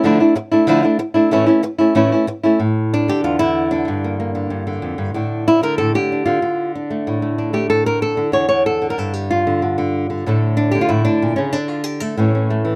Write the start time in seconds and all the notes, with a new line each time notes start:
0.03 D3 F3 A3 D4 E4
0.20 A3 D4 E4
0.35 muted nylon-string guitar stroke
0.52 A3 D4 E4
0.67 D3 F3 A3 D4 E4
0.83 A3 D4 E4
0.99 muted nylon-string guitar stroke
1.14 A3 D4 E4
1.31 A2 E3 A3 C#4 E4
1.46 A3 C#4 E4
1.63 muted nylon-string guitar stroke
1.78 A3 C#4 E4
1.95 A2 E3 A3 C#4 E4
2.12 A3 C#4 E4
2.27 muted nylon-string guitar stroke
2.43 A3 C#4 E4
2.60 A2
2.94 D4
3.08 D3 G4
3.24 E2 F4
3.39 D3 E4
3.71 D3 D4
3.88 G2
4.04 A#3
4.20 A#3
4.35 D3
4.50 G2
4.67 D3
4.82 F2
4.98 G2
5.14 A2 D3 D4
5.48 E4
5.63 D3 A#4
5.78 A2 A4
5.95 D3 G4
6.12 D4
6.26 D3 F4
6.42 D3
6.75 D4
6.90 A3
7.07 A2
7.22 A3
7.38 D4
7.53 A3 G4
7.70 A2 A4
7.86 A#4
8.02 A4
8.17 D3
8.32 E2 C#5
8.49 D3 C#5
8.66 A4
8.82 D3
8.90 A#4
8.98 G2 A4
9.14 G4
9.31 F4
9.47 D3
9.62 D3
9.78 D3
10.10 D3
10.26 A2 D3 A3 A4
10.57 D4
10.71 D3 G4
10.81 F4
10.89 A2 E4
11.05 D3 D4
11.22 A#2
11.36 C#3 C#4
11.53 D3 D4
11.68 F4
11.84 G4
12.00 A3 A4
12.17 A2 E3 A3 C#4
12.35 C#4
12.50 A3
12.65 E3